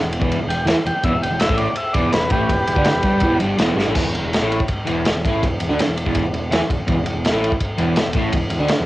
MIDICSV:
0, 0, Header, 1, 7, 480
1, 0, Start_track
1, 0, Key_signature, 1, "minor"
1, 0, Tempo, 365186
1, 1359, Time_signature, 4, 2, 24, 8
1, 11643, End_track
2, 0, Start_track
2, 0, Title_t, "Transistor combo organ"
2, 0, Program_c, 0, 18
2, 637, Note_on_c, 0, 79, 91
2, 870, Note_off_c, 0, 79, 0
2, 1139, Note_on_c, 0, 79, 100
2, 1362, Note_off_c, 0, 79, 0
2, 1372, Note_on_c, 0, 76, 103
2, 1599, Note_off_c, 0, 76, 0
2, 1607, Note_on_c, 0, 79, 95
2, 1829, Note_on_c, 0, 76, 100
2, 1837, Note_off_c, 0, 79, 0
2, 2062, Note_on_c, 0, 74, 110
2, 2068, Note_off_c, 0, 76, 0
2, 2305, Note_off_c, 0, 74, 0
2, 2322, Note_on_c, 0, 76, 89
2, 2535, Note_on_c, 0, 74, 106
2, 2555, Note_off_c, 0, 76, 0
2, 2782, Note_off_c, 0, 74, 0
2, 2788, Note_on_c, 0, 71, 108
2, 3029, Note_off_c, 0, 71, 0
2, 3043, Note_on_c, 0, 67, 102
2, 3051, Note_on_c, 0, 71, 127
2, 4433, Note_off_c, 0, 67, 0
2, 4446, Note_off_c, 0, 71, 0
2, 11643, End_track
3, 0, Start_track
3, 0, Title_t, "Overdriven electric guitar"
3, 0, Program_c, 1, 29
3, 33, Note_on_c, 1, 40, 75
3, 226, Note_off_c, 1, 40, 0
3, 257, Note_on_c, 1, 40, 94
3, 274, Note_on_c, 1, 52, 115
3, 499, Note_off_c, 1, 40, 0
3, 508, Note_off_c, 1, 52, 0
3, 518, Note_on_c, 1, 40, 80
3, 625, Note_off_c, 1, 40, 0
3, 640, Note_on_c, 1, 40, 75
3, 831, Note_off_c, 1, 40, 0
3, 868, Note_on_c, 1, 52, 89
3, 881, Note_on_c, 1, 64, 96
3, 986, Note_off_c, 1, 52, 0
3, 992, Note_off_c, 1, 64, 0
3, 1128, Note_on_c, 1, 40, 73
3, 1243, Note_off_c, 1, 40, 0
3, 1363, Note_on_c, 1, 40, 100
3, 1386, Note_on_c, 1, 52, 106
3, 1474, Note_off_c, 1, 40, 0
3, 1485, Note_off_c, 1, 52, 0
3, 1504, Note_on_c, 1, 40, 80
3, 1612, Note_off_c, 1, 40, 0
3, 1637, Note_on_c, 1, 40, 72
3, 1705, Note_off_c, 1, 40, 0
3, 1721, Note_on_c, 1, 40, 71
3, 1913, Note_off_c, 1, 40, 0
3, 1961, Note_on_c, 1, 45, 100
3, 1970, Note_on_c, 1, 57, 100
3, 2194, Note_off_c, 1, 45, 0
3, 2199, Note_off_c, 1, 57, 0
3, 2557, Note_on_c, 1, 40, 100
3, 2570, Note_on_c, 1, 52, 93
3, 2793, Note_off_c, 1, 40, 0
3, 2800, Note_off_c, 1, 52, 0
3, 2810, Note_on_c, 1, 40, 77
3, 2914, Note_off_c, 1, 40, 0
3, 2930, Note_on_c, 1, 40, 83
3, 3031, Note_on_c, 1, 45, 91
3, 3047, Note_off_c, 1, 40, 0
3, 3055, Note_on_c, 1, 57, 101
3, 3270, Note_off_c, 1, 45, 0
3, 3282, Note_off_c, 1, 57, 0
3, 3283, Note_on_c, 1, 40, 72
3, 3476, Note_off_c, 1, 40, 0
3, 3513, Note_on_c, 1, 40, 70
3, 3628, Note_on_c, 1, 50, 92
3, 3634, Note_on_c, 1, 62, 99
3, 3639, Note_off_c, 1, 40, 0
3, 3749, Note_off_c, 1, 50, 0
3, 3752, Note_off_c, 1, 62, 0
3, 3883, Note_on_c, 1, 40, 79
3, 3993, Note_off_c, 1, 40, 0
3, 3998, Note_on_c, 1, 43, 93
3, 4012, Note_on_c, 1, 55, 111
3, 4235, Note_off_c, 1, 43, 0
3, 4242, Note_off_c, 1, 55, 0
3, 4251, Note_on_c, 1, 40, 92
3, 4255, Note_on_c, 1, 52, 105
3, 4458, Note_off_c, 1, 40, 0
3, 4464, Note_on_c, 1, 43, 93
3, 4480, Note_off_c, 1, 52, 0
3, 4486, Note_on_c, 1, 55, 112
3, 4708, Note_off_c, 1, 43, 0
3, 4713, Note_on_c, 1, 40, 95
3, 4719, Note_off_c, 1, 55, 0
3, 4726, Note_on_c, 1, 52, 96
3, 4927, Note_off_c, 1, 40, 0
3, 4932, Note_on_c, 1, 43, 95
3, 4944, Note_off_c, 1, 52, 0
3, 4949, Note_on_c, 1, 55, 94
3, 5051, Note_on_c, 1, 45, 97
3, 5062, Note_off_c, 1, 43, 0
3, 5071, Note_off_c, 1, 55, 0
3, 5073, Note_on_c, 1, 57, 114
3, 5175, Note_on_c, 1, 40, 93
3, 5182, Note_off_c, 1, 45, 0
3, 5192, Note_off_c, 1, 57, 0
3, 5194, Note_on_c, 1, 52, 106
3, 5299, Note_off_c, 1, 40, 0
3, 5313, Note_off_c, 1, 52, 0
3, 5315, Note_on_c, 1, 40, 80
3, 5432, Note_off_c, 1, 40, 0
3, 5448, Note_on_c, 1, 40, 75
3, 5567, Note_off_c, 1, 40, 0
3, 5582, Note_on_c, 1, 40, 75
3, 5766, Note_off_c, 1, 40, 0
3, 5805, Note_on_c, 1, 57, 109
3, 5807, Note_on_c, 1, 45, 100
3, 6039, Note_off_c, 1, 57, 0
3, 6040, Note_off_c, 1, 45, 0
3, 6379, Note_on_c, 1, 40, 98
3, 6389, Note_on_c, 1, 52, 106
3, 6625, Note_off_c, 1, 40, 0
3, 6630, Note_off_c, 1, 52, 0
3, 6655, Note_on_c, 1, 40, 75
3, 6771, Note_off_c, 1, 40, 0
3, 6784, Note_on_c, 1, 40, 78
3, 6895, Note_off_c, 1, 40, 0
3, 6905, Note_on_c, 1, 45, 89
3, 6920, Note_on_c, 1, 57, 112
3, 7125, Note_on_c, 1, 40, 79
3, 7128, Note_off_c, 1, 45, 0
3, 7136, Note_off_c, 1, 57, 0
3, 7318, Note_off_c, 1, 40, 0
3, 7365, Note_on_c, 1, 40, 70
3, 7476, Note_on_c, 1, 50, 88
3, 7485, Note_off_c, 1, 40, 0
3, 7499, Note_on_c, 1, 62, 103
3, 7593, Note_off_c, 1, 50, 0
3, 7605, Note_off_c, 1, 62, 0
3, 7718, Note_on_c, 1, 40, 78
3, 7913, Note_off_c, 1, 40, 0
3, 7962, Note_on_c, 1, 40, 103
3, 7977, Note_on_c, 1, 52, 110
3, 8196, Note_off_c, 1, 40, 0
3, 8203, Note_off_c, 1, 52, 0
3, 8211, Note_on_c, 1, 40, 79
3, 8312, Note_off_c, 1, 40, 0
3, 8328, Note_on_c, 1, 40, 81
3, 8518, Note_off_c, 1, 40, 0
3, 8552, Note_on_c, 1, 52, 89
3, 8558, Note_on_c, 1, 64, 99
3, 8671, Note_off_c, 1, 52, 0
3, 8674, Note_off_c, 1, 64, 0
3, 8784, Note_on_c, 1, 40, 71
3, 8913, Note_off_c, 1, 40, 0
3, 9030, Note_on_c, 1, 40, 95
3, 9047, Note_on_c, 1, 52, 92
3, 9127, Note_off_c, 1, 40, 0
3, 9143, Note_on_c, 1, 40, 76
3, 9158, Note_off_c, 1, 52, 0
3, 9230, Note_off_c, 1, 40, 0
3, 9246, Note_on_c, 1, 40, 74
3, 9355, Note_off_c, 1, 40, 0
3, 9371, Note_on_c, 1, 40, 72
3, 9578, Note_off_c, 1, 40, 0
3, 9606, Note_on_c, 1, 45, 93
3, 9615, Note_on_c, 1, 57, 118
3, 9856, Note_off_c, 1, 45, 0
3, 9860, Note_off_c, 1, 57, 0
3, 10219, Note_on_c, 1, 40, 100
3, 10242, Note_on_c, 1, 52, 101
3, 10462, Note_off_c, 1, 40, 0
3, 10473, Note_off_c, 1, 52, 0
3, 10489, Note_on_c, 1, 40, 72
3, 10579, Note_off_c, 1, 40, 0
3, 10594, Note_on_c, 1, 40, 84
3, 10706, Note_on_c, 1, 45, 107
3, 10716, Note_off_c, 1, 40, 0
3, 10729, Note_on_c, 1, 57, 108
3, 10944, Note_off_c, 1, 45, 0
3, 10953, Note_on_c, 1, 40, 71
3, 10956, Note_off_c, 1, 57, 0
3, 11147, Note_off_c, 1, 40, 0
3, 11174, Note_on_c, 1, 40, 74
3, 11294, Note_on_c, 1, 50, 95
3, 11305, Note_off_c, 1, 40, 0
3, 11306, Note_on_c, 1, 62, 87
3, 11417, Note_off_c, 1, 50, 0
3, 11424, Note_off_c, 1, 62, 0
3, 11570, Note_on_c, 1, 40, 75
3, 11643, Note_off_c, 1, 40, 0
3, 11643, End_track
4, 0, Start_track
4, 0, Title_t, "Picked electric bass"
4, 0, Program_c, 2, 34
4, 7, Note_on_c, 2, 28, 78
4, 244, Note_off_c, 2, 28, 0
4, 281, Note_on_c, 2, 28, 91
4, 489, Note_off_c, 2, 28, 0
4, 497, Note_on_c, 2, 28, 75
4, 609, Note_off_c, 2, 28, 0
4, 617, Note_on_c, 2, 28, 91
4, 850, Note_off_c, 2, 28, 0
4, 855, Note_on_c, 2, 40, 96
4, 962, Note_off_c, 2, 40, 0
4, 1112, Note_on_c, 2, 28, 93
4, 1210, Note_off_c, 2, 28, 0
4, 1364, Note_on_c, 2, 28, 98
4, 1440, Note_off_c, 2, 28, 0
4, 1448, Note_on_c, 2, 28, 93
4, 1568, Note_off_c, 2, 28, 0
4, 1576, Note_on_c, 2, 28, 74
4, 1699, Note_off_c, 2, 28, 0
4, 1711, Note_on_c, 2, 28, 92
4, 1939, Note_off_c, 2, 28, 0
4, 1955, Note_on_c, 2, 33, 89
4, 2178, Note_off_c, 2, 33, 0
4, 2554, Note_on_c, 2, 28, 96
4, 2760, Note_off_c, 2, 28, 0
4, 2768, Note_on_c, 2, 28, 84
4, 2896, Note_off_c, 2, 28, 0
4, 2912, Note_on_c, 2, 28, 76
4, 3016, Note_off_c, 2, 28, 0
4, 3024, Note_on_c, 2, 33, 112
4, 3253, Note_off_c, 2, 33, 0
4, 3261, Note_on_c, 2, 28, 83
4, 3495, Note_off_c, 2, 28, 0
4, 3508, Note_on_c, 2, 28, 74
4, 3613, Note_off_c, 2, 28, 0
4, 3621, Note_on_c, 2, 38, 107
4, 3718, Note_off_c, 2, 38, 0
4, 3869, Note_on_c, 2, 28, 81
4, 3972, Note_off_c, 2, 28, 0
4, 3980, Note_on_c, 2, 31, 91
4, 4206, Note_off_c, 2, 31, 0
4, 4214, Note_on_c, 2, 28, 108
4, 4447, Note_off_c, 2, 28, 0
4, 4455, Note_on_c, 2, 31, 94
4, 4693, Note_off_c, 2, 31, 0
4, 4701, Note_on_c, 2, 28, 98
4, 4926, Note_off_c, 2, 28, 0
4, 4934, Note_on_c, 2, 31, 105
4, 5061, Note_off_c, 2, 31, 0
4, 5076, Note_on_c, 2, 33, 92
4, 5185, Note_off_c, 2, 33, 0
4, 5192, Note_on_c, 2, 28, 88
4, 5294, Note_off_c, 2, 28, 0
4, 5302, Note_on_c, 2, 28, 80
4, 5413, Note_off_c, 2, 28, 0
4, 5420, Note_on_c, 2, 28, 76
4, 5544, Note_off_c, 2, 28, 0
4, 5552, Note_on_c, 2, 28, 86
4, 5782, Note_off_c, 2, 28, 0
4, 5805, Note_on_c, 2, 33, 93
4, 6029, Note_off_c, 2, 33, 0
4, 6409, Note_on_c, 2, 28, 91
4, 6631, Note_off_c, 2, 28, 0
4, 6657, Note_on_c, 2, 28, 80
4, 6757, Note_off_c, 2, 28, 0
4, 6765, Note_on_c, 2, 28, 79
4, 6877, Note_off_c, 2, 28, 0
4, 6892, Note_on_c, 2, 33, 105
4, 7112, Note_off_c, 2, 33, 0
4, 7135, Note_on_c, 2, 28, 80
4, 7354, Note_off_c, 2, 28, 0
4, 7369, Note_on_c, 2, 28, 78
4, 7476, Note_off_c, 2, 28, 0
4, 7484, Note_on_c, 2, 38, 108
4, 7596, Note_off_c, 2, 38, 0
4, 7733, Note_on_c, 2, 28, 78
4, 7952, Note_off_c, 2, 28, 0
4, 7969, Note_on_c, 2, 28, 90
4, 8190, Note_off_c, 2, 28, 0
4, 8212, Note_on_c, 2, 28, 73
4, 8314, Note_off_c, 2, 28, 0
4, 8322, Note_on_c, 2, 28, 84
4, 8546, Note_off_c, 2, 28, 0
4, 8575, Note_on_c, 2, 40, 107
4, 8681, Note_off_c, 2, 40, 0
4, 8795, Note_on_c, 2, 28, 85
4, 8911, Note_off_c, 2, 28, 0
4, 9039, Note_on_c, 2, 28, 94
4, 9152, Note_off_c, 2, 28, 0
4, 9161, Note_on_c, 2, 28, 82
4, 9265, Note_off_c, 2, 28, 0
4, 9273, Note_on_c, 2, 28, 76
4, 9372, Note_off_c, 2, 28, 0
4, 9380, Note_on_c, 2, 28, 96
4, 9613, Note_off_c, 2, 28, 0
4, 9631, Note_on_c, 2, 33, 97
4, 9858, Note_off_c, 2, 33, 0
4, 10235, Note_on_c, 2, 28, 96
4, 10460, Note_off_c, 2, 28, 0
4, 10467, Note_on_c, 2, 28, 81
4, 10584, Note_off_c, 2, 28, 0
4, 10590, Note_on_c, 2, 28, 70
4, 10696, Note_off_c, 2, 28, 0
4, 10704, Note_on_c, 2, 33, 107
4, 10933, Note_off_c, 2, 33, 0
4, 10952, Note_on_c, 2, 28, 81
4, 11177, Note_off_c, 2, 28, 0
4, 11188, Note_on_c, 2, 28, 77
4, 11283, Note_off_c, 2, 28, 0
4, 11291, Note_on_c, 2, 38, 105
4, 11414, Note_off_c, 2, 38, 0
4, 11559, Note_on_c, 2, 28, 76
4, 11643, Note_off_c, 2, 28, 0
4, 11643, End_track
5, 0, Start_track
5, 0, Title_t, "Muted overdriven electric guitar strokes"
5, 1022, Note_on_c, 9, 29, 68
5, 1154, Note_off_c, 9, 29, 0
5, 1271, Note_on_c, 9, 29, 68
5, 1403, Note_off_c, 9, 29, 0
5, 2231, Note_on_c, 9, 29, 66
5, 2362, Note_off_c, 9, 29, 0
5, 3759, Note_on_c, 9, 29, 60
5, 3891, Note_off_c, 9, 29, 0
5, 6035, Note_on_c, 9, 29, 61
5, 6166, Note_off_c, 9, 29, 0
5, 7600, Note_on_c, 9, 29, 64
5, 7731, Note_off_c, 9, 29, 0
5, 8693, Note_on_c, 9, 29, 65
5, 8825, Note_off_c, 9, 29, 0
5, 8930, Note_on_c, 9, 29, 57
5, 9061, Note_off_c, 9, 29, 0
5, 9869, Note_on_c, 9, 29, 60
5, 10000, Note_off_c, 9, 29, 0
5, 11407, Note_on_c, 9, 29, 61
5, 11538, Note_off_c, 9, 29, 0
5, 11643, End_track
6, 0, Start_track
6, 0, Title_t, "Muted picked electric bass strokes"
6, 970, Note_on_c, 9, 29, 43
6, 1101, Note_off_c, 9, 29, 0
6, 1217, Note_on_c, 9, 29, 40
6, 1349, Note_off_c, 9, 29, 0
6, 2185, Note_on_c, 9, 29, 45
6, 2317, Note_off_c, 9, 29, 0
6, 3726, Note_on_c, 9, 29, 43
6, 3858, Note_off_c, 9, 29, 0
6, 6039, Note_on_c, 9, 29, 39
6, 6170, Note_off_c, 9, 29, 0
6, 7605, Note_on_c, 9, 29, 39
6, 7736, Note_off_c, 9, 29, 0
6, 8695, Note_on_c, 9, 29, 37
6, 8826, Note_off_c, 9, 29, 0
6, 8953, Note_on_c, 9, 29, 41
6, 9084, Note_off_c, 9, 29, 0
6, 9879, Note_on_c, 9, 29, 43
6, 10010, Note_off_c, 9, 29, 0
6, 11440, Note_on_c, 9, 29, 37
6, 11571, Note_off_c, 9, 29, 0
6, 11643, End_track
7, 0, Start_track
7, 0, Title_t, "Drums"
7, 166, Note_on_c, 9, 51, 82
7, 284, Note_on_c, 9, 36, 118
7, 297, Note_off_c, 9, 51, 0
7, 415, Note_off_c, 9, 36, 0
7, 415, Note_on_c, 9, 51, 96
7, 546, Note_off_c, 9, 51, 0
7, 660, Note_on_c, 9, 51, 83
7, 791, Note_off_c, 9, 51, 0
7, 882, Note_on_c, 9, 51, 104
7, 899, Note_on_c, 9, 38, 112
7, 1013, Note_off_c, 9, 51, 0
7, 1030, Note_off_c, 9, 38, 0
7, 1135, Note_on_c, 9, 51, 73
7, 1266, Note_off_c, 9, 51, 0
7, 1359, Note_on_c, 9, 51, 106
7, 1363, Note_on_c, 9, 36, 108
7, 1490, Note_off_c, 9, 51, 0
7, 1494, Note_off_c, 9, 36, 0
7, 1618, Note_on_c, 9, 51, 78
7, 1750, Note_off_c, 9, 51, 0
7, 1831, Note_on_c, 9, 51, 111
7, 1848, Note_on_c, 9, 38, 115
7, 1959, Note_on_c, 9, 36, 111
7, 1963, Note_off_c, 9, 51, 0
7, 1980, Note_off_c, 9, 38, 0
7, 2069, Note_on_c, 9, 51, 77
7, 2091, Note_off_c, 9, 36, 0
7, 2200, Note_off_c, 9, 51, 0
7, 2305, Note_on_c, 9, 51, 96
7, 2437, Note_off_c, 9, 51, 0
7, 2549, Note_on_c, 9, 51, 80
7, 2557, Note_on_c, 9, 36, 108
7, 2680, Note_off_c, 9, 51, 0
7, 2688, Note_off_c, 9, 36, 0
7, 2792, Note_on_c, 9, 51, 94
7, 2809, Note_on_c, 9, 38, 114
7, 2924, Note_off_c, 9, 51, 0
7, 2941, Note_off_c, 9, 38, 0
7, 3022, Note_on_c, 9, 51, 83
7, 3033, Note_on_c, 9, 36, 112
7, 3153, Note_off_c, 9, 51, 0
7, 3164, Note_off_c, 9, 36, 0
7, 3275, Note_on_c, 9, 36, 91
7, 3276, Note_on_c, 9, 51, 106
7, 3407, Note_off_c, 9, 36, 0
7, 3408, Note_off_c, 9, 51, 0
7, 3514, Note_on_c, 9, 51, 82
7, 3630, Note_on_c, 9, 36, 121
7, 3645, Note_off_c, 9, 51, 0
7, 3737, Note_on_c, 9, 51, 113
7, 3754, Note_on_c, 9, 38, 126
7, 3762, Note_off_c, 9, 36, 0
7, 3868, Note_off_c, 9, 51, 0
7, 3885, Note_off_c, 9, 38, 0
7, 3977, Note_on_c, 9, 51, 79
7, 3985, Note_on_c, 9, 36, 113
7, 4108, Note_off_c, 9, 51, 0
7, 4117, Note_off_c, 9, 36, 0
7, 4205, Note_on_c, 9, 51, 105
7, 4223, Note_on_c, 9, 36, 109
7, 4337, Note_off_c, 9, 51, 0
7, 4355, Note_off_c, 9, 36, 0
7, 4463, Note_on_c, 9, 51, 76
7, 4595, Note_off_c, 9, 51, 0
7, 4708, Note_on_c, 9, 51, 107
7, 4725, Note_on_c, 9, 38, 122
7, 4840, Note_off_c, 9, 51, 0
7, 4857, Note_off_c, 9, 38, 0
7, 4979, Note_on_c, 9, 38, 67
7, 5110, Note_off_c, 9, 38, 0
7, 5192, Note_on_c, 9, 49, 122
7, 5199, Note_on_c, 9, 36, 116
7, 5323, Note_off_c, 9, 49, 0
7, 5330, Note_off_c, 9, 36, 0
7, 5453, Note_on_c, 9, 51, 70
7, 5585, Note_off_c, 9, 51, 0
7, 5694, Note_on_c, 9, 51, 93
7, 5711, Note_on_c, 9, 38, 127
7, 5825, Note_off_c, 9, 51, 0
7, 5842, Note_off_c, 9, 38, 0
7, 5939, Note_on_c, 9, 51, 77
7, 6048, Note_on_c, 9, 36, 91
7, 6070, Note_off_c, 9, 51, 0
7, 6153, Note_on_c, 9, 51, 103
7, 6164, Note_off_c, 9, 36, 0
7, 6164, Note_on_c, 9, 36, 97
7, 6285, Note_off_c, 9, 51, 0
7, 6296, Note_off_c, 9, 36, 0
7, 6401, Note_on_c, 9, 51, 79
7, 6532, Note_off_c, 9, 51, 0
7, 6639, Note_on_c, 9, 51, 105
7, 6657, Note_on_c, 9, 38, 112
7, 6771, Note_off_c, 9, 51, 0
7, 6788, Note_off_c, 9, 38, 0
7, 6897, Note_on_c, 9, 36, 101
7, 6904, Note_on_c, 9, 51, 81
7, 7028, Note_off_c, 9, 36, 0
7, 7036, Note_off_c, 9, 51, 0
7, 7138, Note_on_c, 9, 36, 121
7, 7140, Note_on_c, 9, 51, 102
7, 7270, Note_off_c, 9, 36, 0
7, 7272, Note_off_c, 9, 51, 0
7, 7362, Note_on_c, 9, 51, 87
7, 7494, Note_off_c, 9, 51, 0
7, 7614, Note_on_c, 9, 51, 118
7, 7631, Note_on_c, 9, 38, 127
7, 7745, Note_off_c, 9, 51, 0
7, 7763, Note_off_c, 9, 38, 0
7, 7854, Note_on_c, 9, 51, 84
7, 7972, Note_on_c, 9, 36, 85
7, 7985, Note_off_c, 9, 51, 0
7, 8081, Note_on_c, 9, 51, 114
7, 8090, Note_off_c, 9, 36, 0
7, 8090, Note_on_c, 9, 36, 109
7, 8212, Note_off_c, 9, 51, 0
7, 8221, Note_off_c, 9, 36, 0
7, 8329, Note_on_c, 9, 51, 75
7, 8461, Note_off_c, 9, 51, 0
7, 8569, Note_on_c, 9, 51, 109
7, 8586, Note_on_c, 9, 38, 123
7, 8701, Note_off_c, 9, 51, 0
7, 8718, Note_off_c, 9, 38, 0
7, 8807, Note_on_c, 9, 36, 94
7, 8811, Note_on_c, 9, 51, 83
7, 8938, Note_off_c, 9, 36, 0
7, 8943, Note_off_c, 9, 51, 0
7, 9037, Note_on_c, 9, 51, 104
7, 9045, Note_on_c, 9, 36, 121
7, 9169, Note_off_c, 9, 51, 0
7, 9176, Note_off_c, 9, 36, 0
7, 9276, Note_on_c, 9, 51, 74
7, 9407, Note_off_c, 9, 51, 0
7, 9524, Note_on_c, 9, 51, 100
7, 9541, Note_on_c, 9, 38, 115
7, 9655, Note_off_c, 9, 51, 0
7, 9672, Note_off_c, 9, 38, 0
7, 9778, Note_on_c, 9, 51, 71
7, 9885, Note_on_c, 9, 36, 87
7, 9910, Note_off_c, 9, 51, 0
7, 9994, Note_on_c, 9, 51, 103
7, 10000, Note_off_c, 9, 36, 0
7, 10000, Note_on_c, 9, 36, 97
7, 10126, Note_off_c, 9, 51, 0
7, 10132, Note_off_c, 9, 36, 0
7, 10231, Note_on_c, 9, 51, 73
7, 10362, Note_off_c, 9, 51, 0
7, 10464, Note_on_c, 9, 51, 100
7, 10481, Note_on_c, 9, 38, 126
7, 10595, Note_off_c, 9, 51, 0
7, 10612, Note_off_c, 9, 38, 0
7, 10689, Note_on_c, 9, 51, 86
7, 10713, Note_on_c, 9, 36, 96
7, 10820, Note_off_c, 9, 51, 0
7, 10845, Note_off_c, 9, 36, 0
7, 10944, Note_on_c, 9, 51, 119
7, 10956, Note_on_c, 9, 36, 119
7, 11076, Note_off_c, 9, 51, 0
7, 11087, Note_off_c, 9, 36, 0
7, 11175, Note_on_c, 9, 51, 86
7, 11307, Note_off_c, 9, 51, 0
7, 11415, Note_on_c, 9, 51, 111
7, 11432, Note_on_c, 9, 38, 124
7, 11547, Note_off_c, 9, 51, 0
7, 11564, Note_off_c, 9, 38, 0
7, 11643, End_track
0, 0, End_of_file